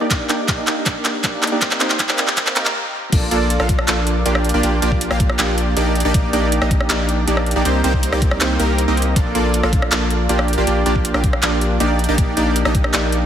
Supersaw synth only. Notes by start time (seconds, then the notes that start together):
0.01 A#3 D4 D#4 G4 D5
0.10 A#3 D4 D#4 G4 D5
0.29 A#3 D4 D#4 G4 D5
0.58 A#3 D4 D#4 G4 D#5
0.86 A#3 D4 D#4 G4 D5
1.24 A#3 D4 D#4 G4 D5
1.52 A#3 D4 D#4 G4 D5
1.61 A#3 C4 D#4 C5
1.80 A#3 C4 D#4 G4 C5
2.09 A#3 C4 D#4 G4 D5
2.37 A#3 C4 D#4 G4 C5
2.56 A#3 C4 D#4 G4 A#4
3.12 A#3 D4 F4 A4 D5
3.31 A#3 D4 F4 A4 D5
3.60 A#3 D4 F4 A4 F5
3.88 A#3 D4 F4 A4 D5
4.26 A#3 D4 F4 G4 D5
4.54 A#3 D4 F4 G4 D5
4.63 A#3 D4 F4 G4 D5
4.82 A#3 D4 F4 G4 D5
5.11 A#3 D4 F4 G4 F5
5.39 A#3 D4 F4 G4 D5
5.77 A#3 D4 D#4 G4 D5
6.05 A#3 D4 D#4 G4 D5
6.14 A#3 D4 D#4 G4 D5
6.33 A#3 D4 D#4 G4 D5
6.62 A#3 D4 D#4 G4 D#5
6.90 A#3 D4 D#4 G4 D5
7.27 A#3 D4 D#4 G4 D5
7.56 A#3 D4 D#4 G4 D5
7.65 A#3 C4 D#4 G4 C5
7.84 A#3 C4 D#4 G4 C5
8.12 A#3 C4 D#4 G4 D5
8.41 A#3 C4 D#4 G4 C5
8.60 A#3 C4 D#4 G4 A#4
8.88 A#3 C4 D#4 G4 D#5
9.16 A#3 D4 F4 A4 D5
9.35 A#3 D4 F4 A4 D5
9.63 A#3 D4 F4 A4 F5
9.92 A#3 D4 F4 A4 D5
10.29 A#3 D4 F4 G4 D5
10.58 A#3 D4 F4 G4 D5
10.67 A#3 D4 F4 G4 D5
10.86 A#3 D4 F4 G4 D5
11.14 A#3 D4 F4 G4 F5
11.43 A#3 D4 F4 G4 D5
11.80 A#3 D4 D#4 G4 D5
12.09 A#3 D4 D#4 G4 D5
12.18 G4
12.37 A#3 D4 D#4 G4 D5
12.65 A#3 D4 D#4 G4 D#5
12.94 A#3 D4 D#4 G4 D5